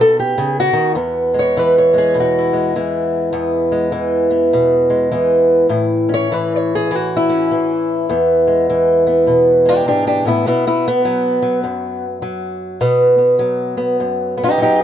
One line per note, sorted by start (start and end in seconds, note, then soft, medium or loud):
0.00 0.37 B2 medium
0.00 0.94 B3 medium
0.00 0.95 D#4 soft
0.00 0.19 A4 medium
0.19 0.58 G4 medium
0.38 0.73 C#3 medium
0.60 0.95 F#4 loud
0.73 0.96 D#3 medium
0.95 3.31 E2 medium
0.95 1.98 B3 soft
1.34 1.93 G#3 soft
1.39 1.59 C#5 medium
1.57 2.76 E3 medium
1.57 1.77 B4 medium
1.78 2.38 C#5 medium
1.94 2.52 G#3 soft
1.98 2.17 G#4 medium
2.14 2.74 B2 medium
2.20 2.75 F#4 medium
2.38 4.74 E4 medium
2.53 3.71 G#3 soft
2.76 3.92 E3 medium
2.76 3.31 B3 soft
3.33 5.69 E2 medium
3.33 4.29 B3 soft
3.72 4.89 G#3 soft
3.92 5.11 E3 medium
4.30 5.11 B3 soft
4.53 5.12 B2 medium
4.90 5.71 G#3 soft
5.12 6.31 E3 medium
5.12 5.70 B3 soft
5.69 8.05 A2 medium
5.69 6.75 E4 soft
6.09 7.27 C#4 soft
6.14 6.33 C#5 loud
6.32 6.90 E3 medium
6.32 6.52 B4 medium
6.56 7.12 C#5 medium
6.75 6.95 G#4 medium
6.91 7.50 E3 medium
6.95 7.72 F#4 medium
7.17 9.50 E4 medium
7.29 8.07 C#4 soft
7.51 8.68 E3 medium
8.09 9.86 E2 medium
8.09 9.06 B3 soft
8.47 9.64 G#3 soft
8.70 10.46 E3 medium
9.07 9.69 B3 soft
9.27 10.45 B2 medium
9.65 10.46 G#3 soft
9.65 9.87 D4 medium
9.65 9.87 G4 medium
9.86 10.23 G#2 medium
9.86 10.06 D4 medium
9.86 10.06 G4 medium
10.07 10.26 D4 medium
10.07 10.26 G4 medium
10.25 10.46 A2 medium
10.25 10.46 B3 medium
10.25 10.46 E4 medium
10.46 11.64 B2 medium
10.46 10.66 B3 medium
10.46 10.66 E4 medium
10.67 10.86 B3 medium
10.67 10.86 E4 medium
10.88 12.05 B3 medium
11.05 11.42 F#3 medium
11.42 12.21 F#3 soft
11.64 12.79 F#2 medium
12.22 12.79 F#3 medium
12.81 14.00 B2 medium
12.81 13.18 B3 soft
13.18 13.77 B3 soft
13.39 14.57 F#3 medium
13.77 14.37 B3 soft
14.00 14.84 F#2 medium
14.37 14.84 B3 soft
14.43 14.61 D#4 medium
14.43 14.62 G4 medium
14.58 14.84 F#3 medium
14.62 14.81 D#4 medium
14.62 14.81 G4 medium